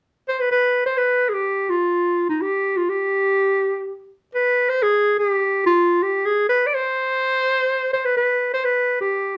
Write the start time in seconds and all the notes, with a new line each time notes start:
0.28 C5
0.41 B4
0.52 B4
0.86 C5
0.98 B4
1.29 G#4
1.34 G4
1.70 F4
2.29 D#4
2.42 G4
2.77 F4
2.90 G4
4.35 B4
4.69 C5
4.83 G#4
5.19 G4
5.66 F4
6.03 G4
6.25 G#4
6.49 B4
6.67 D5
6.75 C5
7.93 C5
8.05 B4
8.17 B4
8.54 C5
8.65 B4
9.01 G4